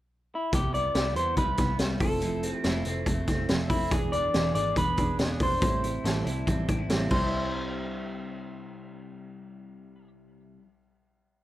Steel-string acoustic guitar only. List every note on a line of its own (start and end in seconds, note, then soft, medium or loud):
0.52 0.74 C3 medium
0.52 0.74 G3 medium
0.52 0.73 B3 medium
0.52 0.72 E4 medium
0.73 0.94 G3 soft
0.73 0.95 B3 soft
0.73 0.95 E4 soft
0.95 1.16 C3 medium
0.95 1.16 G3 medium
0.95 1.15 B3 medium
0.95 1.14 E4 medium
1.15 1.36 G3 soft
1.15 1.37 B3 medium
1.15 1.37 E4 medium
1.36 1.58 C3 medium
1.36 1.59 G3 medium
1.36 1.58 B3 medium
1.36 1.57 E4 medium
1.58 1.79 G3 soft
1.58 1.80 B3 soft
1.58 1.79 E4 soft
1.79 2.01 C3 medium
1.79 2.01 G3 medium
1.79 2.01 B3 medium
1.79 1.99 E4 medium
2.00 2.20 A3 soft
2.00 2.21 C4 soft
2.00 2.21 E4 soft
2.21 2.43 F3 medium
2.21 2.43 A3 medium
2.21 2.43 C4 medium
2.21 2.42 E4 medium
2.43 2.64 A3 soft
2.43 2.64 C4 soft
2.43 2.64 E4 soft
2.64 2.85 F3 medium
2.64 2.86 A3 medium
2.64 2.85 C4 medium
2.64 2.84 E4 medium
2.85 3.06 A3 soft
2.85 3.07 C4 medium
2.85 3.07 E4 medium
3.06 3.28 F3 medium
3.06 3.28 A3 medium
3.06 3.28 C4 medium
3.06 3.27 E4 medium
3.28 3.50 A3 soft
3.28 3.50 C4 soft
3.28 3.49 E4 medium
3.50 3.71 F3 medium
3.50 3.71 A3 medium
3.50 3.71 C4 medium
3.50 3.70 E4 medium
3.71 3.92 A3 soft
3.71 3.93 C4 soft
3.71 3.92 E4 medium
3.92 4.13 E3 medium
3.92 4.14 B3 medium
3.92 4.14 D4 medium
3.92 4.12 G#4 medium
4.13 4.34 B3 soft
4.13 4.34 D4 soft
4.13 4.34 G#4 soft
4.34 4.55 E3 medium
4.34 4.56 B3 medium
4.34 4.55 D4 medium
4.34 4.54 G#4 medium
4.56 4.77 B3 soft
4.56 4.77 D4 soft
4.56 4.77 G#4 medium
4.78 4.98 E3 medium
4.78 4.99 B3 medium
4.78 4.98 D4 medium
4.78 4.97 G#4 medium
4.98 5.19 B3 soft
4.98 5.19 D4 soft
4.98 5.19 G#4 medium
5.19 5.40 E3 medium
5.19 5.41 B3 medium
5.19 5.41 D4 medium
5.19 5.41 G#4 medium
5.42 5.63 B3 soft
5.42 5.63 D4 soft
5.42 5.62 G#4 soft
5.63 5.84 A2 medium
5.63 5.84 E3 medium
5.63 5.84 G3 medium
5.63 5.84 C4 medium
5.63 5.83 E4 medium
5.84 6.06 G3 soft
5.84 6.06 C4 soft
5.84 6.05 E4 soft
6.06 6.27 A2 medium
6.06 6.27 E3 medium
6.06 6.27 G3 medium
6.06 6.26 C4 medium
6.06 6.25 E4 medium
6.26 6.47 G3 medium
6.26 6.48 C4 soft
6.26 6.47 E4 medium
6.48 6.69 E3 medium
6.48 6.69 G3 medium
6.48 6.69 C4 medium
6.48 6.68 E4 medium
6.69 6.90 G3 soft
6.69 6.90 C4 soft
6.69 6.90 E4 medium
6.90 7.11 A2 medium
6.90 7.09 E3 medium
6.90 7.11 G3 medium
6.90 7.11 C4 medium
6.90 7.12 E4 medium
7.10 10.60 C3 medium
7.10 10.62 G3 medium
7.16 10.66 E4 medium